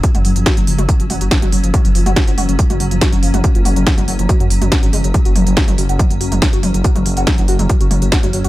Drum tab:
HH |xxoxxxoxxxoxxxox|xxoxxxoxxxoxxxox|xxoxxxoxxxoxxxox|xxoxxxoxxxoxxxox|
SD |----o-------o---|----o-------o---|----o-------o---|----o-------o---|
T2 |-o--o--o--o--o--|o--o--o--o--o--o|--o--o--o--o--o-|--o--o--o--o--o-|
BD |o---o---o---o---|o---o---o---o---|o---o---o---o---|o---o---o---o---|

HH |xxoxxxoxxxoxxxox|
SD |----o-------o---|
T2 |-o--o--o--o--o--|
BD |o---o---o---o---|